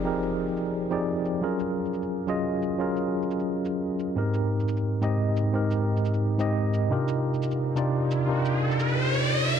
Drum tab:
SH |--x--xxx--x---x-|--x--xxx--x---x-|--x--xxx--x---x-|--x--xxx--x---x-|

SH |--x--xxx--x---x-|--x--xxx--x---x-|--x--xxx-xx---x-|